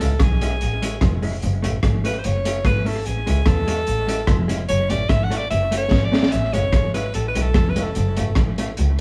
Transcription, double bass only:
0.01 C#2
0.20 B1
0.62 A1
1.02 F1
1.43 F#1
1.64 A1
1.84 G#1
2.25 F#1
2.65 G#1
3.06 A1
3.28 C#2
3.46 E2
3.88 A1
4.28 F1
4.69 F#1
4.91 A1
5.10 G#1
5.51 F#1
5.91 G#1
6.33 A1
6.54 F#1
6.73 G#1
7.14 A1
7.36 B1
7.55 F1
7.96 F#1
8.18 G#1
8.36 A1
8.79 C#2

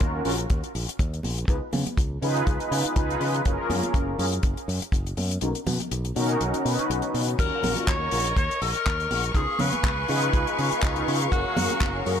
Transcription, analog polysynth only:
Already playing: C#4 F4 F#4 A#4
0.25 C#4 F4 F#4 A#4
1.48 D#4 F4 G#4 B4
2.21 D#4 F4 G#4 B4
2.95 D#4 F4 G#4 B4
3.44 C#4 F4 A#4
4.18 C#4 F4 G#4 A#4
5.41 C#4 D#4 F#4 A#4
6.15 C#4 D#4 F#4 A#4
6.63 C#4 D#4 F#4 B4
7.37 C#4 F4 F#4 A#4
8.11 C#4 F4 F#4 A#4
9.35 D#4 F4 G#4 B4
10.08 D#4 F4 G#4 B4
10.82 D#4 F4 G#4 B4
11.30 C#4 G#4 A#4 F5
12.05 C#4 F4 G#4 A#4

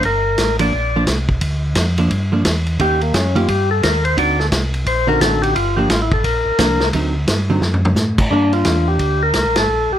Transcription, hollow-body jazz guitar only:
0.59 F3 A#3 D4
0.96 F3 A#3 D4
1.98 F3 A#3 D4
2.32 F3 A#3 D4
2.80 D#3 A#3 C#4 G4
3.35 D#3 A#3 C#4 G4
4.17 D3 C4 D#4 F#4
5.07 D3 C4 D#4 F#4
5.77 F3 A#3 D4
6.59 F3 A#3 D4
6.94 D3 F#3 C4 D#4
7.50 D3 F#3 C4 D#4
8.32 A#3 D4

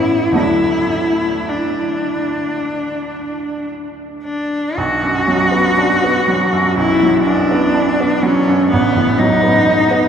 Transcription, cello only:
Already playing: E4
0.37 E4
1.48 D4
4.24 D4
4.78 F#4
6.77 E4
7.24 D4
8.23 C#4
8.71 B3
9.19 D#4

